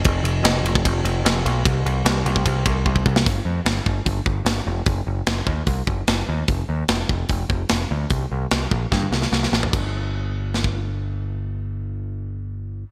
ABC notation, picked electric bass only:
X:1
M:4/4
L:1/8
Q:1/4=148
K:Cdor
V:1 name="Picked electric bass" clef=bass
F,,, F,,, F,,, F,,, F,,, F,,, F,,, =B,,, | C,, C,, C,, C,, C,, C,, C,, C,, | G,,, F,, G,,, G,,, G,,, G,,, G,,, F,,, | _G,,, G,,, G,,, E,, C,, G,,, G,,, E,, |
F,,, E,, F,,, F,,, F,,, F,,, F,,, D,, | C,, C,, C,, B,,, G,, C,, C,, A,,, | G,,,8- | G,,,8 |]